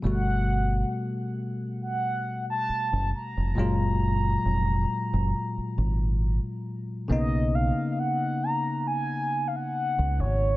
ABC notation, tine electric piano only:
X:1
M:4/4
L:1/8
Q:"Swing 16ths" 1/4=68
K:Bmix
V:1 name="Tine electric piano" clef=bass
[B,,=G,A,F]8 | [^A,,F,G,^E]8 | [C,^A,B,D]8 |]